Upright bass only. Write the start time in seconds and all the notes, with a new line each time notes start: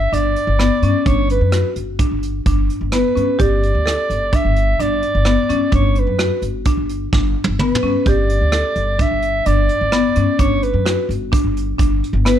0.12 G1
0.47 G1
0.82 G2
1.06 G1
1.41 F#2
1.76 G1
2.11 G1
2.46 G1
2.81 G1
3.17 G2
3.40 G1
3.75 D2
4.10 G1
4.45 G1
4.80 G1
5.15 G1
5.50 G2
5.72 G1
6.07 F#2
6.42 G1
6.77 G1
7.13 G1
7.48 G1
7.83 G2
8.06 G1
8.41 D2
8.76 G1
9.11 G1
9.46 G1
9.81 G1
10.17 G2
10.39 G1
10.74 F#2
11.09 G1
11.44 G1
11.79 G1
12.13 G1